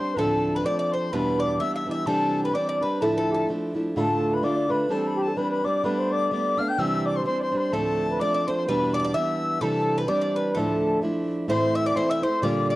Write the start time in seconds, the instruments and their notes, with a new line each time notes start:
Already playing: steel-string acoustic guitar D4, accordion C5, bouzouki C5, flute C6
0.00 steel-string acoustic guitar G3 C4
0.14 steel-string acoustic guitar D2 A2 F3 A3, accordion B4, flute A5
0.18 steel-string acoustic guitar C4 D4, bouzouki A4, accordion A4
0.55 bouzouki B4, accordion B4, flute B5
0.64 steel-string acoustic guitar F3 A3 C4 D4, bouzouki D5, accordion D5, flute D6
0.78 bouzouki D5, accordion D5, flute D6
0.92 bouzouki C5, accordion C5, flute C6
1.12 steel-string acoustic guitar E2 B2 E3 G3 B3 D4, bouzouki B4, accordion B4, flute B5
1.40 bouzouki D5, accordion D5, flute D6
1.59 steel-string acoustic guitar E3 G3 B3 D4, bouzouki E5, accordion E5, flute E6
1.74 bouzouki E5, accordion E5 F5, flute E6
1.86 steel-string acoustic guitar E3 G3 B3 D4
1.90 accordion D5 E5, bouzouki E5, flute E6
2.06 steel-string acoustic guitar C3 E3 G3 C4 D4, accordion A4, bouzouki A4, flute A5
2.44 accordion B4, bouzouki B4, flute B5
2.53 steel-string acoustic guitar E3 G3 C4 D4, bouzouki D5, accordion D5, flute D6
2.68 accordion D5, bouzouki D5
2.81 steel-string acoustic guitar G3 C4 D4, accordion B4, bouzouki B4, flute B5
3.01 steel-string acoustic guitar D2 A2 F3 A3 D4 E4, bouzouki A4, accordion A4, flute A5
3.16 bouzouki A4, accordion A4 B4, flute A5
3.32 accordion G4 A4, bouzouki A4, flute A5
3.49 steel-string acoustic guitar F3 A3 D4 E4
3.74 steel-string acoustic guitar F3 A3 D4 E4
3.96 steel-string acoustic guitar D2 A2 D3 A3 D4 F4, accordion A4, flute B5
4.00 flute A5
4.33 accordion B4, flute B5
4.43 steel-string acoustic guitar D3 A3 D4 F4, accordion D5, flute D6
4.56 accordion D5
4.69 steel-string acoustic guitar D3 A3 D4 F4, accordion B4, flute B5
4.89 steel-string acoustic guitar E3 G3 C4 D4, accordion A4, flute A5
5.07 flute B5
5.17 accordion G4
5.22 flute A5
5.27 accordion A4
5.36 steel-string acoustic guitar E3 G3 C4 D4, accordion B4, flute B5
5.43 accordion B4
5.50 accordion B4, flute B5
5.64 steel-string acoustic guitar G3 C4 D4, accordion D5, flute D6
5.84 steel-string acoustic guitar G3 A3 B3 D4, accordion B4, flute B5
5.98 accordion C5
6.11 accordion D5, flute D6
6.31 steel-string acoustic guitar G3 A3 B3 D4, accordion D5, flute D6
6.57 steel-string acoustic guitar A3 B3 D4, accordion F5, flute F6
6.68 accordion G5, flute G6
6.78 steel-string acoustic guitar C3 E3 G3 C4 D4, accordion E5, flute E6
7.06 accordion D5, flute D6
7.16 accordion C5, flute C6
7.24 steel-string acoustic guitar E3 G3 C4 D4, accordion C5, flute C6
7.40 accordion C5 D5, flute C6
7.52 steel-string acoustic guitar G3 C4 D4
7.56 accordion B4 C5, flute C6
7.72 steel-string acoustic guitar D2 A2 F3 A3 C4 D4, accordion A4, bouzouki A4, flute A5
8.11 accordion B4
8.20 steel-string acoustic guitar F3 A3 C4 D4, bouzouki D5, accordion D5, flute D6
8.34 bouzouki D5, accordion D5
8.47 steel-string acoustic guitar F3 A3 C4 D4, accordion C5, bouzouki C5, flute C6
8.52 flute C6
8.57 flute C6
8.67 steel-string acoustic guitar E2 B2 E3 G3 B3 D4, accordion B4, bouzouki B4, flute B5
8.94 bouzouki D5, accordion D5, flute D6
9.00 bouzouki D5
9.04 bouzouki D5
9.14 steel-string acoustic guitar E3 G3 B3 D4, bouzouki E5, accordion E5, flute E6
9.61 steel-string acoustic guitar C3 E3 G3 C4 D4, bouzouki A4, accordion A4, flute B5
9.65 flute A5
9.98 bouzouki B4, accordion B4, flute B5
10.08 steel-string acoustic guitar E3 G3 C4 D4, bouzouki D5, accordion D5, flute D6
10.21 bouzouki D5, accordion D5
10.35 accordion B4, bouzouki B4, flute B5
10.55 steel-string acoustic guitar D2 A2 F3 A3 D4 E4, bouzouki A4, accordion A4, flute A5
11.02 steel-string acoustic guitar F3 A3 D4 E4
11.48 steel-string acoustic guitar A2 E3 A3 C4 E4, accordion C5, bouzouki C5, flute C6
11.75 bouzouki E5, accordion E5, flute E6
11.86 bouzouki D5, accordion D5, flute D6
11.95 steel-string acoustic guitar E3 A3 C4 E4, accordion C5, bouzouki C5, flute C6
12.08 accordion E5, bouzouki E5, flute E6
12.22 steel-string acoustic guitar A3 C4 E4, accordion C5, bouzouki C5, flute C6
12.42 steel-string acoustic guitar A#2 D3 G3 A#3 F4, accordion D5, bouzouki D5, flute D6
12.69 accordion D5, bouzouki D5, flute D6